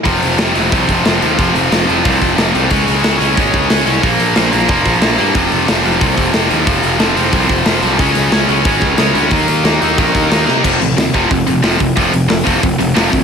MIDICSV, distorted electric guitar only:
0, 0, Header, 1, 2, 480
1, 0, Start_track
1, 0, Tempo, 330943
1, 81, Time_signature, 4, 2, 24, 8
1, 19199, End_track
2, 0, Start_track
2, 0, Title_t, "Distorted electric guitar"
2, 0, Program_c, 0, 30
2, 55, Note_on_c, 0, 41, 87
2, 68, Note_on_c, 0, 48, 98
2, 77, Note_on_c, 0, 53, 98
2, 536, Note_off_c, 0, 41, 0
2, 539, Note_off_c, 0, 48, 0
2, 542, Note_on_c, 0, 41, 79
2, 556, Note_on_c, 0, 48, 88
2, 557, Note_off_c, 0, 53, 0
2, 562, Note_on_c, 0, 53, 83
2, 768, Note_off_c, 0, 48, 0
2, 771, Note_off_c, 0, 53, 0
2, 776, Note_on_c, 0, 53, 77
2, 786, Note_on_c, 0, 48, 83
2, 788, Note_off_c, 0, 41, 0
2, 794, Note_on_c, 0, 41, 68
2, 1008, Note_off_c, 0, 41, 0
2, 1016, Note_off_c, 0, 48, 0
2, 1026, Note_on_c, 0, 41, 93
2, 1034, Note_on_c, 0, 48, 85
2, 1038, Note_off_c, 0, 53, 0
2, 1044, Note_on_c, 0, 53, 91
2, 1499, Note_off_c, 0, 41, 0
2, 1517, Note_off_c, 0, 48, 0
2, 1517, Note_on_c, 0, 41, 66
2, 1534, Note_on_c, 0, 48, 75
2, 1540, Note_off_c, 0, 53, 0
2, 1545, Note_on_c, 0, 53, 81
2, 1740, Note_off_c, 0, 48, 0
2, 1741, Note_off_c, 0, 53, 0
2, 1747, Note_on_c, 0, 53, 96
2, 1748, Note_off_c, 0, 41, 0
2, 1757, Note_on_c, 0, 48, 84
2, 1766, Note_on_c, 0, 41, 79
2, 1981, Note_off_c, 0, 41, 0
2, 1996, Note_off_c, 0, 48, 0
2, 1998, Note_on_c, 0, 41, 89
2, 2011, Note_off_c, 0, 53, 0
2, 2013, Note_on_c, 0, 48, 77
2, 2017, Note_on_c, 0, 53, 94
2, 2454, Note_off_c, 0, 41, 0
2, 2460, Note_off_c, 0, 48, 0
2, 2472, Note_on_c, 0, 41, 82
2, 2477, Note_off_c, 0, 53, 0
2, 2477, Note_on_c, 0, 48, 91
2, 2482, Note_on_c, 0, 53, 91
2, 2706, Note_off_c, 0, 53, 0
2, 2708, Note_off_c, 0, 48, 0
2, 2712, Note_on_c, 0, 53, 92
2, 2720, Note_off_c, 0, 41, 0
2, 2725, Note_on_c, 0, 48, 68
2, 2737, Note_on_c, 0, 41, 73
2, 2938, Note_off_c, 0, 41, 0
2, 2949, Note_off_c, 0, 48, 0
2, 2956, Note_on_c, 0, 41, 78
2, 2966, Note_on_c, 0, 48, 108
2, 2967, Note_off_c, 0, 53, 0
2, 2973, Note_on_c, 0, 53, 96
2, 3411, Note_off_c, 0, 41, 0
2, 3426, Note_off_c, 0, 48, 0
2, 3428, Note_on_c, 0, 41, 78
2, 3438, Note_off_c, 0, 53, 0
2, 3444, Note_on_c, 0, 48, 83
2, 3444, Note_on_c, 0, 53, 79
2, 3665, Note_off_c, 0, 53, 0
2, 3668, Note_off_c, 0, 48, 0
2, 3671, Note_on_c, 0, 53, 88
2, 3674, Note_off_c, 0, 41, 0
2, 3686, Note_on_c, 0, 48, 78
2, 3692, Note_on_c, 0, 41, 78
2, 3905, Note_off_c, 0, 48, 0
2, 3911, Note_on_c, 0, 49, 91
2, 3912, Note_off_c, 0, 41, 0
2, 3914, Note_off_c, 0, 53, 0
2, 3920, Note_on_c, 0, 56, 92
2, 3929, Note_on_c, 0, 61, 101
2, 4364, Note_off_c, 0, 49, 0
2, 4372, Note_off_c, 0, 56, 0
2, 4382, Note_on_c, 0, 49, 74
2, 4383, Note_off_c, 0, 61, 0
2, 4389, Note_on_c, 0, 56, 86
2, 4401, Note_on_c, 0, 61, 98
2, 4605, Note_off_c, 0, 56, 0
2, 4606, Note_off_c, 0, 61, 0
2, 4619, Note_off_c, 0, 49, 0
2, 4623, Note_on_c, 0, 56, 82
2, 4623, Note_on_c, 0, 61, 95
2, 4637, Note_on_c, 0, 49, 69
2, 4850, Note_off_c, 0, 49, 0
2, 4858, Note_off_c, 0, 56, 0
2, 4867, Note_on_c, 0, 49, 92
2, 4868, Note_off_c, 0, 61, 0
2, 4876, Note_on_c, 0, 56, 96
2, 4885, Note_on_c, 0, 61, 96
2, 5335, Note_off_c, 0, 49, 0
2, 5349, Note_off_c, 0, 56, 0
2, 5353, Note_on_c, 0, 49, 82
2, 5358, Note_off_c, 0, 61, 0
2, 5366, Note_on_c, 0, 56, 79
2, 5376, Note_on_c, 0, 61, 76
2, 5576, Note_off_c, 0, 61, 0
2, 5589, Note_off_c, 0, 56, 0
2, 5593, Note_on_c, 0, 61, 90
2, 5604, Note_off_c, 0, 49, 0
2, 5607, Note_on_c, 0, 56, 78
2, 5621, Note_on_c, 0, 49, 76
2, 5823, Note_off_c, 0, 61, 0
2, 5829, Note_off_c, 0, 49, 0
2, 5829, Note_off_c, 0, 56, 0
2, 5835, Note_on_c, 0, 46, 86
2, 5843, Note_on_c, 0, 53, 84
2, 5857, Note_on_c, 0, 58, 99
2, 6297, Note_off_c, 0, 46, 0
2, 6315, Note_on_c, 0, 46, 84
2, 6316, Note_off_c, 0, 58, 0
2, 6323, Note_off_c, 0, 53, 0
2, 6328, Note_on_c, 0, 53, 86
2, 6333, Note_on_c, 0, 58, 81
2, 6529, Note_off_c, 0, 58, 0
2, 6546, Note_on_c, 0, 58, 79
2, 6553, Note_off_c, 0, 46, 0
2, 6553, Note_off_c, 0, 53, 0
2, 6559, Note_on_c, 0, 53, 88
2, 6570, Note_on_c, 0, 46, 64
2, 6775, Note_off_c, 0, 46, 0
2, 6793, Note_off_c, 0, 58, 0
2, 6793, Note_on_c, 0, 46, 96
2, 6799, Note_off_c, 0, 53, 0
2, 6805, Note_on_c, 0, 53, 89
2, 6811, Note_on_c, 0, 58, 99
2, 7254, Note_off_c, 0, 46, 0
2, 7267, Note_off_c, 0, 53, 0
2, 7270, Note_off_c, 0, 58, 0
2, 7271, Note_on_c, 0, 46, 82
2, 7272, Note_on_c, 0, 53, 76
2, 7287, Note_on_c, 0, 58, 73
2, 7487, Note_off_c, 0, 58, 0
2, 7505, Note_on_c, 0, 58, 90
2, 7508, Note_off_c, 0, 46, 0
2, 7514, Note_off_c, 0, 53, 0
2, 7520, Note_on_c, 0, 53, 77
2, 7526, Note_on_c, 0, 46, 73
2, 7731, Note_on_c, 0, 41, 81
2, 7738, Note_off_c, 0, 58, 0
2, 7743, Note_off_c, 0, 46, 0
2, 7748, Note_on_c, 0, 48, 95
2, 7755, Note_off_c, 0, 53, 0
2, 7761, Note_on_c, 0, 53, 94
2, 8208, Note_off_c, 0, 48, 0
2, 8213, Note_off_c, 0, 41, 0
2, 8219, Note_on_c, 0, 41, 83
2, 8225, Note_on_c, 0, 48, 90
2, 8226, Note_off_c, 0, 53, 0
2, 8232, Note_on_c, 0, 53, 94
2, 8456, Note_off_c, 0, 48, 0
2, 8463, Note_off_c, 0, 53, 0
2, 8469, Note_on_c, 0, 53, 74
2, 8474, Note_on_c, 0, 48, 71
2, 8477, Note_off_c, 0, 41, 0
2, 8483, Note_on_c, 0, 41, 65
2, 8685, Note_off_c, 0, 41, 0
2, 8689, Note_off_c, 0, 48, 0
2, 8703, Note_on_c, 0, 41, 104
2, 8706, Note_on_c, 0, 48, 99
2, 8714, Note_off_c, 0, 53, 0
2, 8720, Note_on_c, 0, 53, 102
2, 9161, Note_off_c, 0, 41, 0
2, 9168, Note_off_c, 0, 48, 0
2, 9178, Note_on_c, 0, 41, 65
2, 9185, Note_on_c, 0, 48, 77
2, 9195, Note_off_c, 0, 53, 0
2, 9200, Note_on_c, 0, 53, 81
2, 9399, Note_off_c, 0, 53, 0
2, 9402, Note_off_c, 0, 48, 0
2, 9405, Note_on_c, 0, 53, 86
2, 9410, Note_off_c, 0, 41, 0
2, 9420, Note_on_c, 0, 48, 76
2, 9427, Note_on_c, 0, 41, 74
2, 9631, Note_off_c, 0, 41, 0
2, 9644, Note_off_c, 0, 48, 0
2, 9648, Note_on_c, 0, 41, 83
2, 9661, Note_on_c, 0, 48, 95
2, 9665, Note_off_c, 0, 53, 0
2, 9671, Note_on_c, 0, 53, 96
2, 10116, Note_off_c, 0, 41, 0
2, 10125, Note_off_c, 0, 48, 0
2, 10133, Note_on_c, 0, 41, 76
2, 10142, Note_on_c, 0, 48, 89
2, 10146, Note_off_c, 0, 53, 0
2, 10152, Note_on_c, 0, 53, 95
2, 10378, Note_off_c, 0, 48, 0
2, 10381, Note_off_c, 0, 53, 0
2, 10383, Note_off_c, 0, 41, 0
2, 10387, Note_on_c, 0, 53, 80
2, 10395, Note_on_c, 0, 48, 78
2, 10401, Note_on_c, 0, 41, 69
2, 10604, Note_off_c, 0, 41, 0
2, 10610, Note_off_c, 0, 48, 0
2, 10621, Note_on_c, 0, 41, 90
2, 10624, Note_off_c, 0, 53, 0
2, 10628, Note_on_c, 0, 48, 87
2, 10641, Note_on_c, 0, 53, 97
2, 11080, Note_off_c, 0, 41, 0
2, 11089, Note_off_c, 0, 48, 0
2, 11098, Note_off_c, 0, 53, 0
2, 11098, Note_on_c, 0, 41, 73
2, 11107, Note_on_c, 0, 48, 84
2, 11116, Note_on_c, 0, 53, 83
2, 11333, Note_off_c, 0, 53, 0
2, 11339, Note_off_c, 0, 48, 0
2, 11350, Note_on_c, 0, 53, 94
2, 11352, Note_off_c, 0, 41, 0
2, 11356, Note_on_c, 0, 48, 82
2, 11369, Note_on_c, 0, 41, 75
2, 11580, Note_off_c, 0, 53, 0
2, 11583, Note_off_c, 0, 48, 0
2, 11589, Note_off_c, 0, 41, 0
2, 11592, Note_on_c, 0, 49, 79
2, 11608, Note_on_c, 0, 56, 87
2, 11614, Note_on_c, 0, 61, 101
2, 12050, Note_off_c, 0, 49, 0
2, 12058, Note_off_c, 0, 56, 0
2, 12067, Note_on_c, 0, 49, 84
2, 12069, Note_off_c, 0, 61, 0
2, 12075, Note_on_c, 0, 56, 84
2, 12087, Note_on_c, 0, 61, 84
2, 12289, Note_off_c, 0, 61, 0
2, 12291, Note_off_c, 0, 56, 0
2, 12307, Note_on_c, 0, 61, 89
2, 12309, Note_on_c, 0, 56, 79
2, 12310, Note_off_c, 0, 49, 0
2, 12328, Note_on_c, 0, 49, 77
2, 12532, Note_off_c, 0, 49, 0
2, 12535, Note_off_c, 0, 56, 0
2, 12545, Note_off_c, 0, 61, 0
2, 12549, Note_on_c, 0, 49, 87
2, 12552, Note_on_c, 0, 56, 108
2, 12563, Note_on_c, 0, 61, 95
2, 13003, Note_off_c, 0, 49, 0
2, 13017, Note_off_c, 0, 56, 0
2, 13019, Note_off_c, 0, 61, 0
2, 13021, Note_on_c, 0, 49, 80
2, 13035, Note_on_c, 0, 56, 77
2, 13036, Note_on_c, 0, 61, 84
2, 13246, Note_off_c, 0, 61, 0
2, 13256, Note_off_c, 0, 56, 0
2, 13263, Note_off_c, 0, 49, 0
2, 13264, Note_on_c, 0, 61, 105
2, 13274, Note_on_c, 0, 56, 82
2, 13281, Note_on_c, 0, 49, 78
2, 13494, Note_off_c, 0, 49, 0
2, 13496, Note_off_c, 0, 61, 0
2, 13500, Note_on_c, 0, 51, 91
2, 13501, Note_off_c, 0, 56, 0
2, 13512, Note_on_c, 0, 58, 88
2, 13522, Note_on_c, 0, 63, 80
2, 13961, Note_off_c, 0, 51, 0
2, 13977, Note_off_c, 0, 58, 0
2, 13978, Note_on_c, 0, 51, 85
2, 13982, Note_off_c, 0, 63, 0
2, 13995, Note_on_c, 0, 58, 78
2, 14000, Note_on_c, 0, 63, 85
2, 14204, Note_off_c, 0, 63, 0
2, 14216, Note_off_c, 0, 58, 0
2, 14222, Note_on_c, 0, 63, 83
2, 14227, Note_off_c, 0, 51, 0
2, 14233, Note_on_c, 0, 58, 80
2, 14244, Note_on_c, 0, 51, 65
2, 14449, Note_off_c, 0, 51, 0
2, 14461, Note_off_c, 0, 58, 0
2, 14466, Note_off_c, 0, 63, 0
2, 14467, Note_on_c, 0, 51, 91
2, 14478, Note_on_c, 0, 58, 90
2, 14483, Note_on_c, 0, 63, 93
2, 14912, Note_off_c, 0, 51, 0
2, 14924, Note_off_c, 0, 58, 0
2, 14929, Note_on_c, 0, 51, 74
2, 14936, Note_off_c, 0, 63, 0
2, 14942, Note_on_c, 0, 58, 71
2, 14953, Note_on_c, 0, 63, 93
2, 15153, Note_off_c, 0, 63, 0
2, 15160, Note_off_c, 0, 58, 0
2, 15168, Note_off_c, 0, 51, 0
2, 15170, Note_on_c, 0, 63, 94
2, 15177, Note_on_c, 0, 58, 74
2, 15185, Note_on_c, 0, 51, 65
2, 15409, Note_off_c, 0, 63, 0
2, 15413, Note_off_c, 0, 58, 0
2, 15417, Note_off_c, 0, 51, 0
2, 15418, Note_on_c, 0, 41, 78
2, 15427, Note_on_c, 0, 48, 82
2, 15433, Note_on_c, 0, 53, 88
2, 15648, Note_off_c, 0, 41, 0
2, 15650, Note_off_c, 0, 48, 0
2, 15660, Note_off_c, 0, 53, 0
2, 15666, Note_on_c, 0, 41, 63
2, 15667, Note_on_c, 0, 48, 76
2, 15887, Note_off_c, 0, 41, 0
2, 15888, Note_off_c, 0, 48, 0
2, 15902, Note_on_c, 0, 41, 83
2, 15907, Note_on_c, 0, 48, 88
2, 16125, Note_off_c, 0, 41, 0
2, 16128, Note_off_c, 0, 48, 0
2, 16151, Note_on_c, 0, 41, 79
2, 16164, Note_on_c, 0, 48, 92
2, 16173, Note_on_c, 0, 53, 95
2, 16379, Note_off_c, 0, 41, 0
2, 16386, Note_off_c, 0, 48, 0
2, 16391, Note_off_c, 0, 53, 0
2, 16398, Note_on_c, 0, 41, 79
2, 16403, Note_on_c, 0, 48, 77
2, 16613, Note_off_c, 0, 41, 0
2, 16616, Note_off_c, 0, 48, 0
2, 16631, Note_on_c, 0, 41, 76
2, 16637, Note_on_c, 0, 48, 89
2, 16841, Note_off_c, 0, 41, 0
2, 16853, Note_off_c, 0, 48, 0
2, 16858, Note_on_c, 0, 41, 86
2, 16870, Note_on_c, 0, 48, 93
2, 16880, Note_on_c, 0, 53, 87
2, 17080, Note_off_c, 0, 41, 0
2, 17090, Note_off_c, 0, 48, 0
2, 17098, Note_on_c, 0, 41, 77
2, 17104, Note_off_c, 0, 53, 0
2, 17108, Note_on_c, 0, 48, 72
2, 17323, Note_off_c, 0, 41, 0
2, 17328, Note_off_c, 0, 48, 0
2, 17343, Note_on_c, 0, 41, 82
2, 17345, Note_on_c, 0, 48, 86
2, 17361, Note_on_c, 0, 53, 85
2, 17542, Note_off_c, 0, 41, 0
2, 17551, Note_off_c, 0, 48, 0
2, 17559, Note_on_c, 0, 41, 62
2, 17569, Note_on_c, 0, 48, 70
2, 17584, Note_off_c, 0, 53, 0
2, 17794, Note_off_c, 0, 41, 0
2, 17799, Note_off_c, 0, 48, 0
2, 17812, Note_on_c, 0, 41, 74
2, 17816, Note_on_c, 0, 48, 87
2, 18021, Note_off_c, 0, 41, 0
2, 18027, Note_off_c, 0, 48, 0
2, 18038, Note_on_c, 0, 41, 85
2, 18045, Note_on_c, 0, 48, 86
2, 18056, Note_on_c, 0, 53, 95
2, 18273, Note_off_c, 0, 41, 0
2, 18287, Note_off_c, 0, 48, 0
2, 18291, Note_on_c, 0, 41, 76
2, 18292, Note_off_c, 0, 53, 0
2, 18302, Note_on_c, 0, 48, 90
2, 18520, Note_off_c, 0, 41, 0
2, 18526, Note_off_c, 0, 48, 0
2, 18546, Note_on_c, 0, 48, 82
2, 18548, Note_on_c, 0, 41, 71
2, 18760, Note_off_c, 0, 41, 0
2, 18768, Note_off_c, 0, 48, 0
2, 18778, Note_on_c, 0, 41, 88
2, 18785, Note_on_c, 0, 48, 90
2, 18793, Note_on_c, 0, 53, 94
2, 19000, Note_off_c, 0, 41, 0
2, 19006, Note_off_c, 0, 48, 0
2, 19018, Note_on_c, 0, 41, 72
2, 19021, Note_off_c, 0, 53, 0
2, 19023, Note_on_c, 0, 48, 87
2, 19199, Note_off_c, 0, 41, 0
2, 19199, Note_off_c, 0, 48, 0
2, 19199, End_track
0, 0, End_of_file